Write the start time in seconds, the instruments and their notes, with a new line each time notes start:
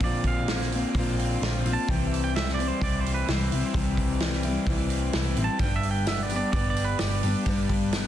Already playing: overdriven electric guitar D3 C4 F4
0.00 picked electric bass A#1, steel-string acoustic guitar A#2 D3 A#3 C4 F4, clean electric guitar D5, kick, open hi-hat
0.24 overdriven electric guitar D3, clean electric guitar F5, kick, open hi-hat
0.48 steel-string acoustic guitar D3 A#3 C4, snare, open hi-hat
0.53 steel-string acoustic guitar F4
0.61 snare
0.72 steel-string acoustic guitar A#3 C4 F4, open hi-hat
0.95 picked electric bass A#1, steel-string acoustic guitar D3 A#3 C4 F4, kick, open hi-hat
1.18 overdriven electric guitar C4, open hi-hat
1.42 picked electric bass A#1, steel-string acoustic guitar D3 A#3 C4 F4, snare, open hi-hat
1.66 picked electric bass A#1, steel-string acoustic guitar A#3 C4 F4, open hi-hat
1.73 clean electric guitar A5
1.88 picked electric bass C2, steel-string acoustic guitar C3 E3 G3 C4 E4, clean electric guitar G5, kick, open hi-hat
2.07 clean electric guitar E5
2.12 overdriven electric guitar E3, open hi-hat
2.24 clean electric guitar G5
2.34 steel-string acoustic guitar E3 G3 C4 E4, clean electric guitar E5, snare, open hi-hat
2.49 snare
2.54 steel-string acoustic guitar E4, clean electric guitar D5
2.59 steel-string acoustic guitar G3 C4, open hi-hat
2.68 clean electric guitar C5
2.81 picked electric bass C2, steel-string acoustic guitar E3 G3 C4 E4, clean electric guitar D5, kick, open hi-hat
3.01 clean electric guitar C5
3.05 overdriven electric guitar C4, open hi-hat
3.14 clean electric guitar B4
3.26 picked electric bass C2, steel-string acoustic guitar E3 G3 C4, overdriven electric guitar E4, snare, open hi-hat
3.30 steel-string acoustic guitar E4, clean electric guitar C5
3.49 picked electric bass C2, overdriven electric guitar C4, steel-string acoustic guitar E4, open hi-hat
3.53 steel-string acoustic guitar G3 C4
3.74 picked electric bass C2, steel-string acoustic guitar C3 E3 G3 C4 E4, kick, open hi-hat
3.97 overdriven electric guitar E3, kick, open hi-hat
4.20 steel-string acoustic guitar E3 G3 C4 E4, snare, open hi-hat
4.33 snare
4.43 steel-string acoustic guitar C4 E4, open hi-hat
4.47 steel-string acoustic guitar G3
4.66 picked electric bass C2, steel-string acoustic guitar E3 G3 C4 E4, kick, open hi-hat
4.89 overdriven electric guitar C4, open hi-hat
5.13 picked electric bass C2, steel-string acoustic guitar E3 G3 C4 E4, snare, open hi-hat
5.36 picked electric bass A1, steel-string acoustic guitar C4 E4, open hi-hat
5.41 steel-string acoustic guitar G3, clean electric guitar A5
5.58 picked electric bass G1, steel-string acoustic guitar G2 D3 G3, tonewheel organ G3 D4 B4, clean electric guitar G5, kick, open hi-hat, tambourine
5.63 steel-string acoustic guitar B3 D4 G4
5.76 clean electric guitar E5
5.83 overdriven electric guitar G3, open hi-hat
5.91 clean electric guitar G5
6.06 steel-string acoustic guitar G3 B3 D4 G4, clean electric guitar E5, snare, open hi-hat, tambourine
6.23 clean electric guitar D5
6.30 steel-string acoustic guitar D4 G4, open hi-hat, tambourine
6.34 steel-string acoustic guitar G3 B3, clean electric guitar D5
6.52 picked electric bass G1, steel-string acoustic guitar G3 B3, clean electric guitar D5, kick, open hi-hat, tambourine
6.56 steel-string acoustic guitar D4 G4
6.70 clean electric guitar D5
6.76 overdriven electric guitar D4, open hi-hat, tambourine
6.85 clean electric guitar B4
6.99 picked electric bass G1, steel-string acoustic guitar G3 B3 D4, overdriven electric guitar G4, clean electric guitar D5, snare, open hi-hat, tambourine
7.03 steel-string acoustic guitar G4
7.23 picked electric bass G1, steel-string acoustic guitar B3 D4 G4, open hi-hat, tambourine
7.27 steel-string acoustic guitar G3
7.46 picked electric bass G1, steel-string acoustic guitar G2 D3 G3 B3 D4 G4, kick, open hi-hat, tambourine
7.69 overdriven electric guitar G3, kick, open hi-hat
7.92 steel-string acoustic guitar G3 B3 D4 G4, snare, open hi-hat, tambourine